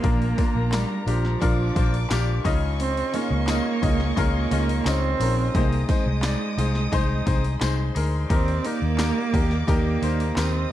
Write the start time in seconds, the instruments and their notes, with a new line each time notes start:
Already playing: cello A#3
0.02 fingered electric bass A#1, grand piano A#2 D4 F4 A#4, violin section A#4 A#5, kick, open hi-hat, tambourine
0.22 open hi-hat
0.37 steel-string acoustic guitar A#3, grand piano D4 F4 A#4, kick, open hi-hat, tambourine
0.55 fingered electric bass A#1
0.71 cello G3, grand piano D4 F4 A#4, snare, clap, open hi-hat, tambourine
1.06 fingered electric bass A#1, cello F3, grand piano D4 F4 G4, steel-string acoustic guitar D4, open hi-hat, tambourine
1.25 snare
1.41 fingered electric bass A#1, grand piano D4 F4 A#4, steel-string acoustic guitar D4, violin section D5 D6, kick, open hi-hat, tambourine
1.75 fingered electric bass A#1, steel-string acoustic guitar A#3, grand piano D4 F4 C5, kick, open hi-hat, tambourine
1.94 open hi-hat
2.10 fingered electric bass A#1, grand piano D4 F4 G4, snare, clap, open hi-hat, tambourine
2.44 fingered electric bass C#2, grand piano C#3 C#4 D#4 F4 G#4 D#5, violin section D#5 C#6, kick, open hi-hat, tambourine
2.79 cello C4, open hi-hat, tambourine
2.97 open hi-hat
3.13 cello A#3, grand piano C#4 D#4 F4 G#4 C#5, steel-string acoustic guitar C#4, open hi-hat, tambourine
3.30 fingered electric bass C#2
3.47 grand piano C#4 D#4 F4 G#4 D#5, snare, clap, open hi-hat, tambourine
3.82 fingered electric bass C#2, grand piano C#4 D#4 F4 G#4 D#5, steel-string acoustic guitar F4, kick, open hi-hat, tambourine
4.00 snare
4.16 fingered electric bass C#2, cello A#3, grand piano C#4 D#4 F4 G#4 A#4, steel-string acoustic guitar F4, kick, open hi-hat, tambourine
4.51 fingered electric bass C#2, grand piano C#4 D#4 F4 G#4 D#5, steel-string acoustic guitar C#4, open hi-hat, tambourine
4.69 open hi-hat
4.85 fingered electric bass C#2, cello C4, grand piano C#4 D#4 F4 G#4 D#5, snare, clap, open hi-hat, tambourine
5.20 fingered electric bass A#1, grand piano C#4 D#4 F4 G#4 A#4, open hi-hat, tambourine
5.55 fingered electric bass C2, grand piano C3 D#4 G#4 C5, cello A#3, violin section D#5 D#6, kick, open hi-hat, tambourine
5.73 open hi-hat
5.89 cello G#3, steel-string acoustic guitar C4, grand piano D#4 G#4 C5, kick, open hi-hat, tambourine
6.06 fingered electric bass C2
6.23 grand piano D#4 G#4 D5, snare, clap, open hi-hat, tambourine
6.57 fingered electric bass C2, grand piano D#4 G#4 C5, steel-string acoustic guitar F4, open hi-hat, tambourine
6.75 snare
6.92 fingered electric bass C2, grand piano D#4 G#4 C5, steel-string acoustic guitar D#4, kick, open hi-hat, tambourine
7.26 fingered electric bass C2, steel-string acoustic guitar C4, grand piano D#4 G#4 C5, kick, open hi-hat, tambourine
7.44 open hi-hat
7.61 fingered electric bass C2, grand piano D#4 G#4 C5, violin section C5 C6, snare, clap, open hi-hat, tambourine
7.95 fingered electric bass D2, grand piano D#4 G#4 A#4, open hi-hat, tambourine
8.30 fingered electric bass D#2, grand piano D#3 D#4 G4 A#4, cello C4, violin section D5 D6, kick, open hi-hat, tambourine
8.48 open hi-hat
8.64 cello A#3, grand piano D#4 G4 A#4, steel-string acoustic guitar D#4, open hi-hat, tambourine
8.82 fingered electric bass D#2
8.98 grand piano D#4 G4 A#4, snare, clap, open hi-hat, tambourine
9.33 fingered electric bass D#2, grand piano D#4 G4 A#4, steel-string acoustic guitar G4, kick, open hi-hat, tambourine
9.51 snare
9.67 fingered electric bass D#2, cello A#3, grand piano D#4 G4 A#4, steel-string acoustic guitar G4, kick, open hi-hat, tambourine
10.02 fingered electric bass D#2, grand piano D#4 G4 C5, steel-string acoustic guitar D#4, open hi-hat, tambourine
10.20 open hi-hat
10.36 fingered electric bass D#2, cello C4, grand piano D#4 G4 A#4, violin section D#5 D#6, snare, clap, open hi-hat, tambourine